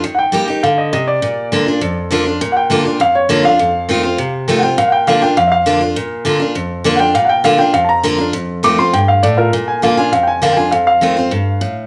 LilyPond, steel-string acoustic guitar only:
\new Staff \with { instrumentName = "Steel-string acoustic guitar" } { \time 4/4 \key bes \major \tempo 4 = 202 << { r4 <g bes ees' g'>8 <ees' g'>8 r2 | r4 <d bes d' f'>8 <d' f'>8 r4 <d bes d' f'>8 <d' f'>8 | r4 <d bes d' f'>8 <d' f'>8 r4 <d bes d' f'>8 <d' f'>8 | r4 <ees a c' f'>8 <c' f'>8 r4 <ees a c' f'>8 <c' f'>8 |
r4 <d bes d' f'>8 <d' f'>8 r4 <d bes d' f'>8 <d' f'>8 | r4 <d bes d' f'>8 <d' f'>8 r4 <d bes d' f'>8 <d' f'>8 | r4 <d bes d' f'>8 <d' f'>8 r4 <d bes d' f'>8 <d' f'>8 | r4 <ees a c' f'>8 <c' f'>8 r2 |
r4 <d bes d' f'>8 <d' f'>8 r4 <d bes d' f'>8 <d' f'>8 | r4 <ees a c' f'>8 <c' f'>8 r2 | } \\ { ees2 d4 c4 | bes,2 f,2 | bes,2 f,2 | f,2 c2 |
bes,2 f,2 | bes,2 f,2 | bes,2 f,2 | f,2 g,4 a,4 |
bes,2 f,2 | f,2 g,4 a,4 | } >> }